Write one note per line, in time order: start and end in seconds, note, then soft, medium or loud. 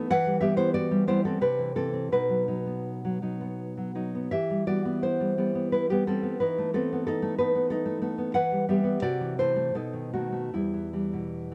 0.00 0.11 B3 medium
0.10 1.38 E3 loud
0.10 0.40 B4 loud
0.10 0.40 F#5 loud
0.26 0.40 G3 medium
0.40 0.90 G3 medium
0.40 0.55 B3 medium
0.40 0.57 G4 medium
0.40 0.57 E5 loud
0.56 1.06 B3 medium
0.56 0.73 E4 medium
0.56 0.74 C5 loud
0.74 1.06 F#4 medium
0.74 1.06 D5 loud
0.91 1.06 G3 medium
1.07 1.39 G3 medium
1.07 1.23 B3 medium
1.07 1.24 E4 medium
1.07 1.25 C5 loud
1.24 1.42 B3 medium
1.24 1.42 C4 medium
1.24 1.41 A4 medium
1.41 2.10 C3 medium
1.41 1.75 D4 medium
1.41 1.75 B4 medium
1.59 1.75 E3 medium
1.76 2.08 E3 medium
1.76 1.92 C4 medium
1.76 2.11 A4 medium
1.93 2.12 C4 medium
2.12 4.27 B2 medium
2.12 2.46 D#4 medium
2.12 3.92 B4 medium
2.29 2.47 F#3 soft
2.48 3.03 F#3 medium
2.48 3.21 D#4 medium
2.66 3.40 B3 medium
3.05 3.21 F#3 medium
3.22 3.76 F#3 soft
3.22 3.94 D#4 medium
3.41 4.14 B3 soft
3.77 3.94 F#3 medium
3.95 4.28 F#3 soft
3.95 4.28 D#4 soft
4.15 4.32 B3 soft
4.31 6.35 E3 medium
4.31 4.65 G4 medium
4.31 4.66 E5 medium
4.50 4.66 G3 medium
4.67 5.19 G3 medium
4.67 4.84 B3 medium
4.67 5.01 F#4 medium
4.67 5.01 D5 medium
4.85 5.37 B3 medium
5.03 5.69 E4 medium
5.03 5.69 C5 medium
5.20 5.37 G3 medium
5.38 5.88 G3 medium
5.38 5.54 B3 medium
5.55 5.89 B3 medium
5.72 5.89 E4 medium
5.72 5.89 B4 medium
5.90 6.06 G3 medium
5.90 6.06 B3 medium
5.90 6.07 G4 medium
6.07 6.37 G3 medium
6.07 6.22 B3 medium
6.07 6.39 C4 medium
6.07 6.39 A4 medium
6.23 6.40 B3 medium
6.40 8.32 E3 medium
6.40 6.72 D#4 medium
6.40 6.72 B4 medium
6.58 6.73 A3 medium
6.74 7.21 A3 medium
6.74 6.91 B3 medium
6.74 7.05 C4 medium
6.74 7.06 A4 loud
6.93 7.38 B3 medium
7.07 7.37 D#4 medium
7.07 7.38 A4 medium
7.22 7.37 A3 medium
7.38 7.84 A3 medium
7.38 7.54 B3 medium
7.38 7.69 D#4 medium
7.38 7.69 B4 medium
7.55 8.01 B3 medium
7.70 8.32 D#4 medium
7.70 8.33 A4 medium
7.85 8.00 A3 medium
8.02 8.32 A3 medium
8.02 8.17 B3 medium
8.18 8.35 B3 medium
8.34 9.01 E3 medium
8.34 8.67 B4 medium
8.34 8.67 F#5 loud
8.52 8.68 G3 medium
8.69 9.00 G3 medium
8.69 8.83 B3 medium
8.69 9.02 G4 medium
8.69 9.02 E5 medium
8.84 9.02 B3 medium
9.02 9.72 C3 medium
9.02 9.36 F#4 medium
9.02 9.37 D5 medium
9.21 9.37 E3 medium
9.38 9.71 E3 soft
9.38 9.55 A3 medium
9.38 9.73 E4 medium
9.38 9.74 C5 medium
9.56 9.75 A3 soft
9.75 10.50 B2 medium
9.75 10.11 D#4 medium
9.75 10.12 A4 medium
9.93 10.12 D#3 soft
10.13 10.49 D#3 soft
10.13 10.31 A3 medium
10.13 10.51 F#4 medium
10.32 10.53 A3 soft
10.54 11.54 E2 medium
10.54 10.93 G3 soft
10.54 11.54 E4 medium
10.74 10.92 E3 soft
10.93 11.50 E3 soft
10.93 11.54 G3 soft
11.13 11.54 B2 soft